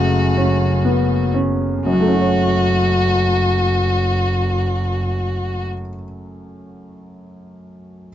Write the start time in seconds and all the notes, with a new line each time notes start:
Already playing: F#1 F#2 C#3 A3 C#4 F#4
0.37 C#4
0.85 B3
1.34 C#4
1.85 F#1 F#2 F#4
1.93 F#3
2.01 A3
2.08 C#4
2.14 F#4
2.21 C#5